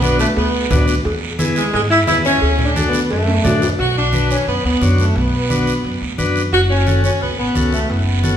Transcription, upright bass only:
Already playing: B1
0.36 D2
0.71 D2
1.05 E2
1.73 G#2
2.08 E2
2.42 D2
3.10 F#2
3.44 F#2
3.79 B1
4.47 F#2
4.64 D2
4.81 F#2
5.15 B1
5.84 F#2
6.01 D2
6.19 F#2
6.53 F#1
7.21 C#2
7.38 A1
7.55 C#2
7.90 F#1

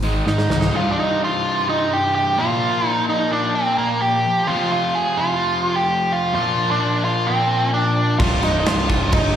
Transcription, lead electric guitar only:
0.28 D#4
0.77 F4
0.92 D4
1.00 D#4
1.24 F4
1.69 D#4
1.93 G4
2.15 G4
2.38 F4
2.87 D#4
3.09 D#4
3.32 D4
3.55 C4
3.78 A#3
4.01 G4
4.47 F4
4.72 F4
4.95 G#4
5.17 F4
5.76 G4
6.12 F4
6.35 F4
6.71 D4
7.05 F4
7.26 C4
7.74 D4
8.19 F4
8.44 D#4
8.60 D#4
8.68 F4
9.14 D#4

